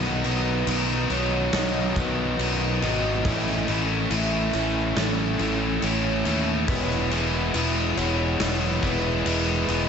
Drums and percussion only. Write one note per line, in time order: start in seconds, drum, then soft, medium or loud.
0.03 snare soft
0.24 crash medium
0.67 crash medium
1.10 crash medium
1.53 snare loud
1.53 crash loud
1.96 kick medium
1.96 crash medium
2.39 crash loud
2.82 crash medium
3.25 kick loud
3.25 crash medium
3.46 snare soft
3.68 crash medium
4.11 crash medium
4.53 crash medium
4.97 snare loud
4.97 crash medium
5.39 crash medium
5.82 crash medium
6.25 crash medium
6.68 kick loud
6.68 crash medium
6.90 snare soft
7.11 crash medium
7.54 crash loud
7.97 crash medium
8.40 snare loud
8.40 crash loud
8.83 kick medium
8.83 crash medium
9.26 crash loud
9.68 crash medium